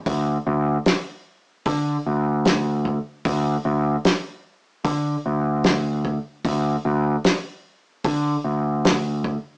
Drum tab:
HH |o-o-o-o-|o-o-o-o-|o-o-o-o-|
SD |--o---o-|--o---o-|--o---o-|
BD |o---o--o|o---o--o|o---o--o|